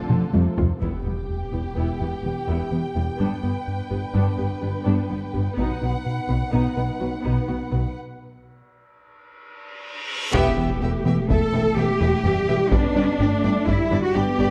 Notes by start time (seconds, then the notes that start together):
Already playing: D3 A3 F4 A4 A5
0.10 F1 F2 F3 C4, taiko mid
0.33 F1 F2 C3 F3, taiko high
0.58 F1 F2 F4, taiko low
0.80 E1 E2 E3 B3 E4 G4 G5, taiko, impact
1.04 E1 E2 G3 B3
1.29 E2
1.52 E1 E2 B3 E4, taiko
1.76 E1 E2 E3 B3 E4
2.00 E1 E2 B3 E4
2.24 E1 E2 E3 G3 B3
2.48 E1 E2 E3 B3 E4
2.71 E1 E2 E3 B3
2.95 E1 E2 G3 B3 E4
3.19 G1 G2 G3 B3 D4 B4
3.42 G1 G2 B3
3.68 G2
3.90 G1 G2 B3 G4
4.14 G1 G2 G3 B3 D4
4.38 G1 G2 B3 G4
4.62 G1 G2 G3 B3 D4
4.86 G1 G2 G3 B3 D4
5.10 G1 G2 G3 B3 D4
5.34 G1 G2 G3 B3 G4
5.57 B1 B2 B3 D#4 F#5, taiko
5.81 B1 B2 B3 D#4
6.06 B2
6.29 B1 B2 B3 B4
6.53 B1 B2 B3 D#4
6.76 B1 B2 B3 B4
7.00 B1 B2 F#3 B3 F#4
7.23 B1 B2 B3 D#4
7.48 B1 B2 B3 F#4
7.71 B1 B2 F#3 B3 B4
7.96 reverse cymbal
10.33 E1 E2 E3 B3 G4 E5 G5, taiko, impact
10.57 E1 E3 B3 E5 G5
10.81 E1 E2 A3 B3 E5 G5
11.04 E1 E3 B3 E5 G5
11.28 E1 E2 E3 B3 A4 E5 G5, taiko
11.52 E1 E3 B3 E5 G5, taiko low-mid
11.76 E1 E3 B3 G4 E5 G5
12.01 E1 E2 E3 B3 E5 G5
12.24 E1 E3 G3 B3 E5 G5, taiko low-mid
12.48 E1 E3 B3 E5 G5
12.72 G1 G2 G3 B3 D4 D5 G5, taiko
12.95 G1 G3 B3 D4 D5 G5
13.19 G1 G2 A3 B3 D5 G5
13.43 G1 G3 B3 D4 D5 G5
13.66 G1 G2 G3 B3 E4 D5 G5, taiko
13.90 G1 G3 B3 D4 D5 G5, taiko low-mid
14.03 F#4
14.15 G1 G3 B3 D4 G4 D5 G5
14.38 G1 G2 G3 B3 D5 G5